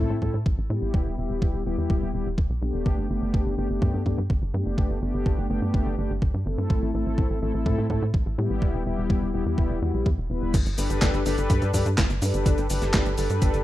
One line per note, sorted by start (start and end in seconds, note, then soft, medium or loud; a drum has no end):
0.00 0.19 A3 medium
0.00 0.19 C4 medium
0.00 0.19 E4 medium
0.00 0.19 A4 medium
0.10 0.21 A2 medium
0.22 0.33 A2 medium
0.22 0.36 A3 medium
0.22 0.36 C4 medium
0.22 0.36 E4 medium
0.22 0.36 A4 medium
0.22 kick medium
0.34 0.45 A2 medium
0.46 0.57 A1 medium
0.46 kick loud
0.58 0.69 A1 medium
0.70 0.81 A2 medium
0.70 1.15 G3 medium
0.70 1.15 B3 medium
0.70 1.15 E4 medium
0.70 1.15 G4 medium
0.82 0.93 A1 medium
0.94 1.05 E1 loud
0.94 kick loud
1.06 1.17 E1 medium
1.18 1.29 E1 medium
1.18 1.63 G3 medium
1.18 1.63 B3 medium
1.18 1.63 E4 medium
1.18 1.63 G4 medium
1.30 1.41 E1 medium
1.42 1.53 E1 medium
1.42 kick loud
1.54 1.65 E1 medium
1.66 1.77 E1 medium
1.66 1.76 G3 medium
1.66 1.76 B3 medium
1.66 1.76 E4 medium
1.66 1.76 G4 loud
1.78 1.89 E2 medium
1.78 2.11 G3 medium
1.78 2.11 B3 medium
1.78 2.11 E4 medium
1.78 2.11 G4 medium
1.90 2.01 E1 medium
1.90 kick loud
2.02 2.13 E1 medium
2.14 2.25 E1 medium
2.14 2.28 G3 medium
2.14 2.28 B3 medium
2.14 2.28 E4 medium
2.14 2.28 G4 medium
2.26 2.37 E1 medium
2.38 2.49 E1 medium
2.38 kick loud
2.50 2.61 B1 medium
2.62 2.72 B1 medium
2.62 3.07 A3 medium
2.62 3.07 B3 medium
2.62 3.07 D4 medium
2.62 3.07 G4 medium
2.74 2.85 E1 medium
2.86 2.97 G1 loud
2.86 kick loud
2.98 3.09 G1 medium
3.10 3.21 G1 medium
3.10 3.55 A3 medium
3.10 3.55 B3 medium
3.10 3.55 D4 medium
3.10 3.55 G4 medium
3.22 3.33 G1 medium
3.34 3.45 G1 loud
3.34 kick loud
3.46 3.57 G1 medium
3.58 3.69 G1 medium
3.58 3.68 A3 medium
3.58 3.68 B3 medium
3.58 3.68 D4 medium
3.58 3.68 G4 loud
3.70 3.81 G1 medium
3.70 4.03 A3 medium
3.70 4.03 B3 medium
3.70 4.03 D4 medium
3.70 4.03 G4 medium
3.82 3.93 G2 loud
3.82 kick loud
3.94 4.05 G2 medium
4.06 4.17 G2 medium
4.06 4.20 A3 medium
4.06 4.20 B3 medium
4.06 4.20 D4 medium
4.06 4.20 G4 medium
4.06 kick medium
4.18 4.29 G2 medium
4.30 4.41 G1 loud
4.30 kick loud
4.42 4.53 G1 medium
4.54 4.65 G2 medium
4.54 4.99 A3 medium
4.54 4.99 B3 medium
4.54 4.99 D4 medium
4.54 4.99 G4 medium
4.66 4.77 G1 medium
4.78 4.89 G1 loud
4.78 kick loud
4.90 5.01 G1 medium
5.02 5.13 G1 medium
5.02 5.47 A3 medium
5.02 5.47 B3 medium
5.02 5.47 D4 medium
5.02 5.47 G4 medium
5.14 5.25 G1 medium
5.26 5.37 G1 loud
5.26 kick loud
5.38 5.49 G1 medium
5.50 5.61 G1 medium
5.50 5.60 A3 loud
5.50 5.60 B3 medium
5.50 5.60 D4 medium
5.50 5.60 G4 loud
5.62 5.73 G2 medium
5.62 5.95 A3 medium
5.62 5.95 B3 medium
5.62 5.95 D4 medium
5.62 5.95 G4 medium
5.74 5.85 G1 loud
5.74 kick loud
5.86 5.97 G1 medium
5.98 6.09 G1 medium
5.98 6.12 A3 medium
5.98 6.12 B3 medium
5.98 6.12 D4 medium
5.98 6.12 G4 medium
6.10 6.21 G1 medium
6.22 6.33 G1 medium
6.22 kick loud
6.34 6.45 G2 medium
6.46 6.57 G1 medium
6.46 6.91 A3 medium
6.46 6.91 C4 medium
6.46 6.91 E4 medium
6.46 6.91 A4 medium
6.58 6.69 G2 medium
6.70 6.81 A1 loud
6.70 kick loud
6.82 6.93 A1 medium
6.94 7.05 A1 medium
6.94 7.39 A3 medium
6.94 7.39 C4 medium
6.94 7.39 E4 medium
6.94 7.39 A4 medium
7.06 7.17 A1 medium
7.18 7.29 A1 medium
7.18 kick loud
7.30 7.41 A1 medium
7.42 7.53 A1 medium
7.42 7.52 A3 loud
7.42 7.52 C4 medium
7.42 7.52 E4 medium
7.42 7.52 A4 loud
7.54 7.65 A1 medium
7.54 7.87 A3 medium
7.54 7.87 C4 medium
7.54 7.87 E4 medium
7.54 7.87 A4 medium
7.66 7.77 A2 loud
7.66 kick loud
7.78 7.89 A2 medium
7.90 8.01 A2 medium
7.90 8.04 A3 medium
7.90 8.04 C4 medium
7.90 8.04 E4 medium
7.90 8.04 A4 medium
7.90 kick medium
8.02 8.13 A2 medium
8.14 8.25 A1 medium
8.14 kick loud
8.26 8.37 A1 medium
8.38 8.49 A2 medium
8.38 8.83 G3 medium
8.38 8.83 B3 medium
8.38 8.83 E4 medium
8.38 8.83 G4 medium
8.50 8.61 A1 medium
8.62 8.73 E1 loud
8.62 kick loud
8.74 8.85 E1 medium
8.86 8.97 E1 medium
8.86 9.31 G3 medium
8.86 9.31 B3 medium
8.86 9.31 E4 medium
8.86 9.31 G4 medium
8.98 9.09 E1 medium
9.10 9.21 E1 loud
9.10 kick loud
9.22 9.33 E1 medium
9.34 9.45 E1 medium
9.34 9.44 G3 loud
9.34 9.44 B3 medium
9.34 9.44 E4 medium
9.34 9.44 G4 loud
9.46 9.57 E2 medium
9.46 9.79 G3 medium
9.46 9.79 B3 medium
9.46 9.79 E4 medium
9.46 9.79 G4 medium
9.58 9.69 E1 medium
9.58 kick loud
9.70 9.81 E1 medium
9.82 9.93 E2 medium
9.82 9.92 G3 medium
9.82 9.92 B3 medium
9.82 9.92 E4 medium
9.82 9.92 F#4 medium
9.94 10.05 B1 medium
9.94 10.08 G3 medium
9.94 10.08 B3 medium
9.94 10.08 E4 medium
9.94 10.08 G4 medium
10.06 10.17 E2 medium
10.06 kick loud
10.18 10.29 E1 medium
10.30 10.41 E1 medium
10.30 10.52 G3 medium
10.30 10.52 B3 medium
10.30 10.52 E4 medium
10.30 10.52 B4 medium
10.42 10.53 E1 medium
10.54 10.65 G1 loud
10.54 kick loud
10.54 closed hi-hat loud
10.54 crash loud
10.54 cabasa soft
10.66 10.77 G1 medium
10.66 closed hi-hat soft
10.66 cabasa soft
10.78 10.89 G1 loud
10.78 11.23 D4 medium
10.78 11.23 G4 medium
10.78 11.23 A4 medium
10.78 11.23 B4 loud
10.78 open hi-hat loud
10.78 cabasa medium
10.90 11.01 G1 medium
10.90 closed hi-hat soft
10.90 cabasa soft
11.02 11.13 G1 loud
11.02 kick loud
11.02 snare loud
11.02 clap medium
11.02 closed hi-hat loud
11.02 cabasa soft
11.14 11.25 G1 medium
11.14 closed hi-hat soft
11.14 cabasa soft
11.26 11.37 G1 medium
11.26 11.36 D4 loud
11.26 11.36 G4 medium
11.26 11.36 A4 medium
11.26 11.36 B4 loud
11.26 open hi-hat loud
11.26 cabasa medium
11.38 11.49 G1 medium
11.38 11.71 D4 medium
11.38 11.71 G4 medium
11.38 11.71 A4 medium
11.38 11.71 B4 loud
11.38 closed hi-hat soft
11.38 cabasa soft
11.50 11.61 G2 loud
11.50 kick loud
11.50 closed hi-hat loud
11.50 cabasa soft
11.62 11.73 G2 medium
11.62 closed hi-hat soft
11.62 cabasa soft
11.74 11.85 G2 loud
11.74 11.88 D4 medium
11.74 11.88 G4 medium
11.74 11.88 A4 medium
11.74 11.88 B4 medium
11.74 kick medium
11.74 open hi-hat loud
11.74 cabasa medium
11.86 11.97 G2 medium
11.86 closed hi-hat soft
11.86 cabasa soft
11.98 12.09 G1 loud
11.98 kick loud
11.98 snare loud
11.98 clap medium
11.98 closed hi-hat loud
11.98 cabasa soft
12.10 12.21 G1 medium
12.10 closed hi-hat soft
12.10 cabasa soft
12.22 12.33 G2 medium
12.22 12.67 D4 medium
12.22 12.67 G4 medium
12.22 12.67 A4 medium
12.22 12.67 B4 medium
12.22 open hi-hat loud
12.22 cabasa medium
12.34 12.45 G1 medium
12.34 closed hi-hat soft
12.34 cabasa soft
12.46 12.57 G1 loud
12.46 kick loud
12.46 closed hi-hat medium
12.46 cabasa soft
12.58 12.69 G1 medium
12.58 closed hi-hat soft
12.58 cabasa soft
12.70 12.81 G1 loud
12.70 13.15 D4 medium
12.70 13.15 G4 medium
12.70 13.15 A4 medium
12.70 13.15 B4 medium
12.70 open hi-hat loud
12.70 cabasa medium
12.82 12.93 G1 medium
12.82 snare soft
12.82 closed hi-hat soft
12.82 cabasa soft
12.94 13.05 G1 loud
12.94 kick loud
12.94 snare loud
12.94 clap medium
12.94 closed hi-hat medium
12.94 cabasa soft
13.06 13.17 G1 medium
13.06 closed hi-hat soft
13.06 cabasa soft
13.18 13.29 G1 medium
13.18 13.28 D4 loud
13.18 13.28 G4 medium
13.18 13.28 A4 medium
13.18 13.28 B4 loud
13.18 open hi-hat loud
13.18 cabasa medium
13.30 13.41 G2 medium
13.30 13.63 D4 medium
13.30 13.63 G4 medium
13.30 13.63 A4 medium
13.30 13.63 B4 loud
13.30 closed hi-hat soft
13.30 cabasa soft
13.42 13.53 G1 loud
13.42 kick loud
13.42 closed hi-hat medium
13.42 cabasa soft
13.54 13.64 G1 medium
13.54 closed hi-hat soft
13.54 cabasa soft